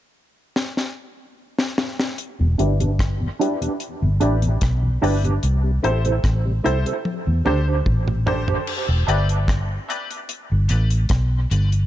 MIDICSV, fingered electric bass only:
0, 0, Header, 1, 2, 480
1, 0, Start_track
1, 0, Key_signature, 1, "minor"
1, 0, Tempo, 810811
1, 1291, Time_signature, 4, 2, 24, 8
1, 7025, End_track
2, 0, Start_track
2, 0, Title_t, "Fingered electric bass"
2, 0, Program_c, 0, 33
2, 1424, Note_on_c, 0, 28, 92
2, 1519, Note_off_c, 0, 28, 0
2, 1536, Note_on_c, 0, 31, 84
2, 1948, Note_off_c, 0, 31, 0
2, 2382, Note_on_c, 0, 31, 81
2, 2478, Note_off_c, 0, 31, 0
2, 2498, Note_on_c, 0, 33, 104
2, 2702, Note_off_c, 0, 33, 0
2, 2737, Note_on_c, 0, 35, 94
2, 2941, Note_off_c, 0, 35, 0
2, 2978, Note_on_c, 0, 31, 95
2, 3182, Note_off_c, 0, 31, 0
2, 3217, Note_on_c, 0, 36, 98
2, 3421, Note_off_c, 0, 36, 0
2, 3459, Note_on_c, 0, 33, 86
2, 3663, Note_off_c, 0, 33, 0
2, 3695, Note_on_c, 0, 33, 86
2, 3900, Note_off_c, 0, 33, 0
2, 3942, Note_on_c, 0, 36, 89
2, 4046, Note_off_c, 0, 36, 0
2, 4305, Note_on_c, 0, 40, 87
2, 4400, Note_off_c, 0, 40, 0
2, 4417, Note_on_c, 0, 38, 88
2, 4621, Note_off_c, 0, 38, 0
2, 4657, Note_on_c, 0, 33, 85
2, 5068, Note_off_c, 0, 33, 0
2, 5261, Note_on_c, 0, 28, 102
2, 5357, Note_off_c, 0, 28, 0
2, 5375, Note_on_c, 0, 31, 91
2, 5787, Note_off_c, 0, 31, 0
2, 6226, Note_on_c, 0, 31, 93
2, 6320, Note_off_c, 0, 31, 0
2, 6338, Note_on_c, 0, 33, 106
2, 6541, Note_off_c, 0, 33, 0
2, 6574, Note_on_c, 0, 35, 94
2, 6778, Note_off_c, 0, 35, 0
2, 6815, Note_on_c, 0, 31, 108
2, 7019, Note_off_c, 0, 31, 0
2, 7025, End_track
0, 0, End_of_file